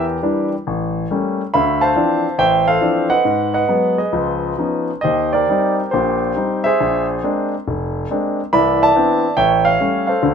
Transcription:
Already playing: E2 E3 G4 A#4
0.23 E3 G3 D4
0.67 A1
1.11 G3 A3 A#3 C#4
1.54 D2 E5 F5 B5
1.81 C5 F5 A5
1.96 E3 F3 C4 D4
2.38 A1 C5 E5 G5
2.67 A4 C5 F5
2.81 E3 F3 C4 D4
3.10 B4 D#5 F#5
3.25 G#2
3.54 B4 D#5 F#5
3.68 F#3 G#3 B3
3.98 G#4 B4 D#5
4.12 C#2 F3
4.58 F3 B3 C#4 D#4
5.01 D#2 G4 C5 D#5
5.33 G4 A#4 D5
5.49 G3 C4 D#4
5.91 A#1 A#2 G4 C5
6.36 G3 C4 D#4
6.64 G#4 C5 E5
6.81 A#1
7.23 G#3 A#3 C4 D4
7.68 F1
8.11 G#3 A#3 C4 D4
8.53 C2 E3 D5 E5 B5
8.82 D5 E5 A5
8.95 E3 B3 C4 D4
9.37 A1 C#5 E5 G5
9.65 C#5 F5
9.80 G3 A3 C#4
10.07 A4 C5 F5
10.23 D2 D3

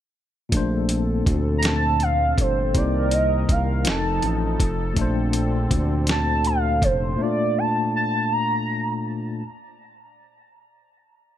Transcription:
0.49 A#1 A#2 D3 A3 C4 A4, kick, closed hi-hat
0.54 D4 C5
0.89 closed hi-hat
1.26 D2, kick, closed hi-hat
1.58 A#5
1.63 A5, snare, closed hi-hat
2.00 F5, closed hi-hat
2.38 G1 C5, kick, closed hi-hat
2.74 C2 C3 D#3 A#3 D#4 A#4 C5 D5, kick, closed hi-hat
3.11 D#5, closed hi-hat
3.49 C2 F5, kick, closed hi-hat
3.84 F1 F3 C4 D#4 A4, snare, closed hi-hat
3.89 A5
4.22 A1, closed hi-hat
4.60 F1, kick, closed hi-hat
4.94 A#1 A#2 D3 A3 C4, kick, closed hi-hat
4.99 D4 C5
5.33 closed hi-hat
5.71 D2, kick, closed hi-hat
6.07 A5, snare, closed hi-hat
6.45 F5, closed hi-hat
6.82 F1 C5, kick, closed hi-hat
7.16 A#2 A3
7.21 D4 F4 D5
7.58 A5
7.96 A5
8.32 A#5

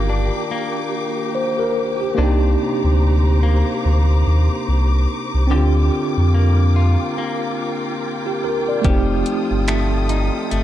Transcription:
Already playing: G1 D#3 A#3 D4 F4 G4 A#4 G5 D6
0.09 D4
0.51 A#3
1.35 C5
1.59 A#4
2.01 G4
2.15 C2 C3 A#3 D4
2.19 D#4 C5 A#5 D6
2.23 G4
2.84 D2
3.43 A#3
3.85 D2
4.27 D#2
4.68 C2
5.34 C2
5.47 D3 C4 D4 A#4
5.51 D2 F4 G4 G5
5.56 G4
6.17 F2
6.34 A#3
6.76 F4
7.18 A#3
8.26 G4
8.44 A#4
8.68 D5
8.81 F1 F3 A3 C4 G4 A4 D#6, kick, closed hi-hat
8.87 D#4 G4
9.26 closed hi-hat
9.51 G1
9.68 A3, finger snap, closed hi-hat
10.09 D#4, closed hi-hat
10.51 G1 A3, closed hi-hat

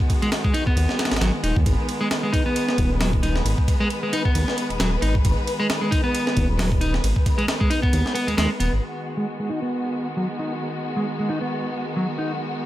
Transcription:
Already playing: D#3 G#3 B3 F#4
0.10 kick, ride
0.22 G#3, ride
0.32 snare, ride
0.44 G#3, kick
0.54 D#4, ride
0.67 B3, kick
0.76 D#2, ride
0.89 snare
0.99 snare, ride
1.05 snare, ride
1.12 G#1, snare, ride
1.16 snare, ride
1.21 G#1 F#3, snare, ride
1.44 D#1 D#4, ride
1.56 D#2, kick
1.66 G#1 B4, kick, ride
1.89 ride
2.01 G#3
2.11 snare, ride
2.23 G#3
2.33 D#4, kick, ride
2.46 B3
2.56 ride
2.69 snare
2.78 D#1, kick, ride
3.01 F#3, snare, open hi-hat
3.13 kick
3.23 D#4, ride
3.36 snare
3.45 G#1, ride
3.58 kick
3.68 kick, ride
3.80 G#3
3.90 ride
4.03 G#3
4.13 D#4, ride
4.25 B3, kick
4.35 D#2, ride
4.48 snare
4.58 ride
4.70 D#1, ride
4.80 D#1 F#3, snare, ride
5.02 G#1 D#4, ride
5.15 kick
5.25 G#1, kick, ride
5.47 ride
5.60 G#3
5.70 snare, ride
5.81 G#3
5.91 D#4, kick, ride
6.04 B3
6.15 ride
6.27 snare
6.37 D#1, kick, ride
6.59 F#3, snare, open hi-hat
6.72 kick
6.81 D#4, ride
6.94 snare
7.04 G#1, ride
7.16 kick
7.26 kick, ride
7.38 G#3, ride
7.48 snare, ride
7.60 G#3, kick
7.70 D#4, ride
7.82 B3, kick
7.93 D#2, ride
8.06 snare
8.15 B3, ride
8.27 D#2 G#3, ride
8.37 D#2 G#3, snare, ride
8.60 D#1 B3, ride
8.73 G#1
8.82 D#3 G#3 B3 F#4
9.17 G#3
9.40 G#3
9.49 D#4
9.62 B3
10.17 F#3
10.39 D#4
10.97 G#3
11.19 G#3
11.29 D#4
11.41 B3
11.96 F#3
12.19 D#4

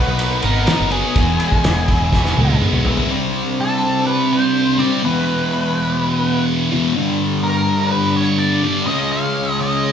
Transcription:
Already playing: B2 B3 D#4 F#4 B4 D#5 F#5 D#6
0.07 B1
0.19 D#4, ride
0.43 G#1 B3 A#4, ride
0.67 D#4, snare, ride
0.81 F#1
0.91 F#4 G#4, ride
1.16 E1 E2 E5 G#5 E6, kick, ride
1.40 G#3, ride
1.52 kick
1.64 E1 B3, snare, ride
1.88 E4, kick, ride
2.01 E1
2.13 B3, kick, snare
2.25 snare
2.37 C#2 G#3, high tom
2.49 high tom
2.62 B3, mid tom
2.73 B1, mid tom
2.85 E4, floor tom
2.97 floor tom
3.09 C3 G3 D4 E4 C5
3.13 C4
3.60 A4
4.07 B4
4.33 C5
4.78 G3 C4 D5
4.82 C3
5.02 E2 B2 E3 G#3 B3 B4
6.71 E2 B2 E3
6.95 G2 D3 G3 B3 D4
7.43 A#4
7.91 B4
8.16 C#5
8.39 D5
8.63 G2 D3 G3
8.86 C#3 G#3 C#4 F4 C#5 D#5
9.12 F5
9.60 D#5

